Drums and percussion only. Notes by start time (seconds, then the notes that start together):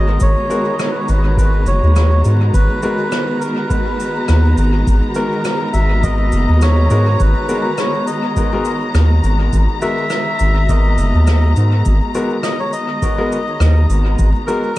0.20 kick, cabasa
0.50 cabasa
0.79 cross-stick, cabasa
1.08 cabasa
1.37 kick, cabasa
1.66 cabasa
1.96 cross-stick, cabasa
2.25 cabasa
2.54 kick, cabasa
2.82 cabasa
3.12 cross-stick, cabasa
3.42 cabasa
3.70 kick, cabasa
4.00 cabasa
4.28 cross-stick, cabasa
4.57 cabasa
4.87 kick, cabasa
5.15 cabasa
5.45 cross-stick, cabasa
5.74 cabasa
6.03 kick, cabasa
6.32 cabasa
6.61 cross-stick, cabasa
6.90 cabasa
7.20 kick, cabasa
7.49 cabasa
7.78 cross-stick, cabasa
8.07 cabasa
8.36 kick, cabasa
8.65 cabasa
8.95 cross-stick, cabasa
9.24 cabasa
9.53 kick, cabasa
9.82 cabasa
10.10 cross-stick, cabasa
10.39 cabasa
10.69 kick, cabasa
10.98 cabasa
11.27 cross-stick, cabasa
11.56 cabasa
11.85 kick, cabasa
12.15 cabasa
12.43 cross-stick, cabasa
12.73 cabasa
13.02 kick, cabasa
13.32 cabasa
13.60 cross-stick, cabasa
13.90 cabasa
14.19 kick, cabasa
14.48 cabasa